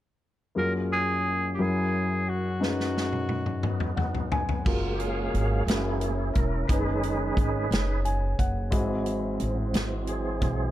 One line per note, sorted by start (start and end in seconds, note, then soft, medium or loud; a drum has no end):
0.55 1.55 F#1 soft
0.55 1.54 F#2 soft
0.55 1.58 A#3 soft
0.55 1.59 F4 soft
0.55 1.58 F#4 soft
0.55 1.59 G#4 soft
0.55 0.73 A#4 medium
0.93 1.49 G#4 medium
1.55 2.57 F#1 soft
1.55 2.58 C#4 soft
1.55 1.64 G4 soft
1.59 2.57 F#2 soft
1.59 2.61 E4 soft
1.59 2.62 F#4 soft
1.59 2.31 G#4 medium
1.59 2.62 A#4 soft
2.29 2.62 F#4 medium
2.60 4.61 F#1 soft
2.60 4.61 F#2 soft
2.60 4.61 C#4 soft
2.60 4.61 D#4 soft
2.60 4.61 G#4 soft
2.60 4.62 B4 soft
2.60 snare soft
2.65 3.95 F#4 medium
2.80 snare soft
2.97 snare soft
3.13 high tom soft
3.29 high tom soft
3.46 mid tom soft
3.63 4.62 B3 soft
3.63 4.29 D#4 soft
3.63 4.34 F#4 medium
3.63 mid tom medium
3.80 mid tom soft
3.96 4.29 F#5 soft
3.96 mid tom medium
4.15 floor tom medium
4.30 4.46 D#4 medium
4.30 4.63 G#5 soft
4.30 floor tom medium
4.49 floor tom medium
4.65 5.30 F#1 medium
4.65 5.64 F#3 soft
4.65 6.68 F#3 medium
4.65 5.64 G#3 soft
4.65 5.64 A#3 soft
4.65 4.93 F4 medium
4.65 5.68 F4 soft
4.65 5.68 F#4 soft
4.65 5.67 G#4 soft
4.65 5.68 G#4 soft
4.65 5.66 A#4 soft
4.65 5.68 A#4 medium
4.65 5.66 F5 medium
4.65 kick medium
4.65 crash medium
4.93 5.00 G4 medium
4.98 5.64 C#4 medium
4.98 5.64 G#4 medium
4.98 5.64 F5 medium
4.98 closed hi-hat soft
5.34 5.65 G#1 medium
5.34 closed hi-hat soft
5.65 6.31 F#1 medium
5.65 6.12 E3 soft
5.65 6.13 G#3 soft
5.65 6.68 C#4 soft
5.65 6.68 E4 medium
5.65 6.66 E4 soft
5.65 6.30 G#4 medium
5.65 6.68 A#4 soft
5.65 6.68 C#5 medium
5.65 closed hi-hat medium
5.70 6.14 A#3 soft
5.70 6.66 C#4 soft
5.70 6.70 E4 soft
5.70 6.71 F#4 soft
5.70 6.71 A#4 medium
5.70 snare medium
6.01 closed hi-hat soft
6.34 6.67 E1 medium
6.34 6.69 A#4 medium
6.34 kick medium
6.34 closed hi-hat soft
6.68 7.33 F#1 medium
6.68 7.66 D#3 soft
6.68 7.67 G#3 soft
6.68 7.67 C#4 soft
6.68 8.69 C#4 soft
6.68 8.71 D#4 medium
6.68 8.01 D#4 medium
6.68 8.69 D#4 soft
6.68 10.71 G#4 medium
6.68 8.01 G#4 medium
6.68 8.00 B4 medium
6.68 8.70 B4 medium
6.68 8.71 C#5 medium
6.68 kick medium
6.68 closed hi-hat medium
6.72 8.70 G#4 soft
6.72 8.70 B4 medium
7.03 closed hi-hat soft
7.37 7.68 G#1 medium
7.37 kick medium
7.37 closed hi-hat soft
7.71 8.35 F#1 medium
7.71 snare medium
7.71 closed hi-hat medium
8.05 8.36 G#5 medium
8.05 closed hi-hat soft
8.39 8.72 F#1 medium
8.39 8.70 F#5 medium
8.39 kick medium
8.39 closed hi-hat soft
8.70 9.36 G#1 medium
8.70 9.69 G#2 medium
8.70 10.71 E3 soft
8.70 10.71 F#3 soft
8.70 10.71 C4 medium
8.70 10.71 C4 soft
8.70 10.71 E4 medium
8.70 10.71 F#4 soft
8.70 10.71 G#4 medium
8.70 kick medium
8.70 closed hi-hat medium
8.75 10.71 E4 medium
8.75 10.71 F#4 medium
8.75 10.71 C5 medium
9.06 closed hi-hat soft
9.40 9.71 A1 medium
9.40 closed hi-hat soft
9.74 10.38 G#1 medium
9.74 snare medium
9.74 closed hi-hat medium
10.07 10.41 G#4 medium
10.07 closed hi-hat soft
10.41 10.71 B1 medium
10.41 10.71 G#4 medium
10.41 kick medium
10.41 closed hi-hat soft